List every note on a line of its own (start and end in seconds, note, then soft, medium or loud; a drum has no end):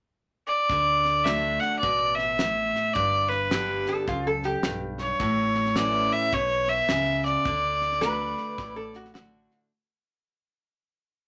0.47 1.26 D5 medium
0.70 1.59 D2 medium
0.70 1.24 D3 medium
0.70 kick loud
0.70 snare soft
1.05 snare soft
1.24 1.80 D3 soft
1.24 1.80 A3 medium
1.24 1.80 D4 medium
1.24 1.81 F#4 medium
1.24 1.61 E5 medium
1.24 snare medium
1.24 hi-hat pedal medium
1.60 1.79 F#5 medium
1.60 snare soft
1.79 2.37 B2 medium
1.79 2.17 D5 medium
1.79 kick loud
1.79 snare soft
1.83 2.72 A1 medium
2.15 2.95 E5 medium
2.15 snare soft
2.39 2.93 A2 medium
2.39 snare loud
2.39 hi-hat pedal medium
2.76 snare soft
2.93 3.85 G1 medium
2.93 4.04 G2 medium
2.93 3.31 D5 medium
2.93 kick loud
2.93 snare soft
3.29 3.86 B4 medium
3.29 snare soft
3.51 4.05 D3 medium
3.51 4.06 G3 medium
3.51 4.06 B3 medium
3.51 4.06 G4 medium
3.51 snare loud
3.51 hi-hat pedal medium
3.86 4.07 A4 medium
3.86 snare soft
4.07 4.56 C#2 medium
4.07 4.63 F#2 medium
4.07 4.26 F4 medium
4.07 kick loud
4.07 snare soft
4.27 4.45 A4 medium
4.43 4.81 G4 medium
4.43 snare soft
4.63 5.12 B1 medium
4.63 5.18 G2 medium
4.63 snare loud
4.63 hi-hat pedal medium
4.98 5.78 C#5 medium
4.98 snare soft
5.19 6.09 A1 medium
5.19 6.29 A2 medium
5.19 kick loud
5.19 snare soft
5.55 snare soft
5.66 snare soft
5.76 6.31 E3 medium
5.76 6.31 A3 medium
5.76 6.32 C#4 medium
5.76 6.32 E4 medium
5.76 6.14 D5 medium
5.76 snare medium
5.76 hi-hat pedal medium
6.11 6.35 E5 loud
6.11 snare soft
6.33 6.81 B1 medium
6.33 6.87 B2 medium
6.33 6.71 C#5 medium
6.33 kick loud
6.33 snare soft
6.68 7.25 E5 loud
6.68 snare soft
6.89 7.37 C#2 medium
6.89 7.44 C#3 medium
6.89 snare loud
6.89 hi-hat pedal medium
7.24 8.93 D5 medium
7.24 snare soft
7.45 8.35 D2 medium
7.45 8.01 D3 medium
7.45 kick loud
7.45 snare soft
7.81 snare soft
7.92 snare soft
8.01 8.57 D3 medium
8.01 8.57 A3 medium
8.01 8.57 D4 medium
8.01 8.57 F#4 medium
8.01 8.75 B4 loud
8.01 snare loud
8.01 hi-hat pedal medium
8.38 snare soft
8.58 9.48 A1 medium
8.58 9.67 A2 medium
8.58 kick loud
8.58 snare soft
8.76 8.95 A4 medium
8.94 9.13 F#4 medium
8.94 snare soft
9.05 snare soft
9.14 9.69 D3 medium
9.14 9.70 A3 medium
9.14 9.70 D4 medium
9.14 9.59 F#4 medium
9.14 9.70 F#4 medium
9.14 snare loud
9.14 hi-hat pedal medium
9.51 snare soft